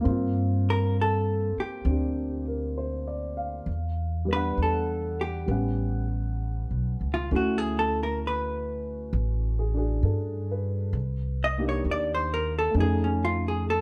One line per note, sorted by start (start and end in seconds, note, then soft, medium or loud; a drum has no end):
0.01 3.65 A#3 soft
0.01 1.84 C4 soft
0.05 1.53 G2 medium
0.05 3.69 F4 soft
0.70 0.96 A#4 medium
1.01 1.58 A4 medium
1.57 2.45 G4 medium
1.57 muted upright bass stroke soft
1.85 3.63 D2 medium
1.85 3.67 C4 soft
1.85 3.68 D4 soft
1.89 3.69 G4 soft
2.48 2.94 A#4 soft
2.78 3.35 C5 soft
3.07 3.54 D5 soft
3.37 3.84 F5 soft
3.66 4.53 E2 medium
4.25 5.45 G3 soft
4.25 5.47 B3 soft
4.33 5.50 D4 soft
4.33 4.59 B4 medium
4.33 5.50 F#5 medium
4.57 5.44 E2 medium
4.63 5.20 A4 medium
5.21 6.07 G4 medium
5.46 6.66 A1 medium
5.46 7.29 G3 soft
5.46 7.31 B3 soft
5.46 7.30 C#4 soft
5.51 7.32 F#5 soft
6.71 6.99 B1 soft
7.01 7.29 C#2 soft
7.14 7.29 F4 medium
7.31 9.09 D2 medium
7.31 10.95 A3 soft
7.31 10.95 C#4 soft
7.31 10.95 E4 soft
7.31 9.74 F#4 medium
7.36 7.58 F#4 soft
7.58 7.90 G#4 medium
7.79 8.00 A4 medium
8.03 8.19 A#4 medium
8.27 10.02 B4 medium
9.13 10.00 A1 medium
9.59 9.76 G#4 soft
9.74 10.94 D4 soft
9.74 10.95 F#4 soft
9.74 10.96 G#4 soft
10.03 10.90 G2 medium
10.03 10.76 A4 soft
10.51 11.14 B4 soft
10.93 11.80 C2 medium
11.44 11.64 D#5 medium
11.58 12.76 A#3 soft
11.58 12.76 D4 soft
11.58 12.76 D#4 soft
11.58 12.77 G4 soft
11.69 11.84 C#5 medium
11.84 12.71 D#2 medium
11.91 12.14 D5 medium
12.15 12.45 C5 medium
12.34 12.54 A#4 medium
12.59 12.74 A4 medium
12.70 13.81 A3 soft
12.74 13.81 F2 medium
12.74 13.81 C#4 soft
12.74 13.81 D#4 soft
12.80 13.08 G#4 medium
12.80 13.81 A4 soft
13.04 13.35 C#4 soft
13.25 13.45 F4 medium
13.48 13.64 G#4 medium
13.70 13.81 A4 medium